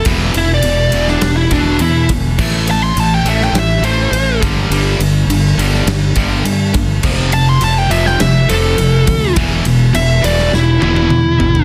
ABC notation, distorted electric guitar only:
X:1
M:4/4
L:1/8
Q:1/4=103
K:Ephr
V:1 name="Distorted electric guitar" clef=bass
[E,,B,,E,] [E,,B,,] [E,,B,,] [E,,B,,E,] [E,,B,,] [E,,B,,E,] [E,,B,,] [E,,B,,] | [A,,E,A,] [A,,E,] [A,,E,] [A,,E,A,] [A,,E,] [A,,E,A,] [A,,E,] [G,,D,G,] | [G,,D,G,] [G,,D,] [G,,D,] [G,,D,G,] [G,,D,] [G,,D,G,] [G,,D,] [G,,D,] | [F,,C,F,] [F,,C,] [F,,C,] [F,,C,F,] [F,,C,] [F,,C,F,] [F,,C,] [F,,C,] |
[E,,B,,E,] [E,,B,,] [E,,B,,] [E,,B,,E,] [E,,B,,] [E,,B,,E,] [E,,B,,] [E,,B,,] |]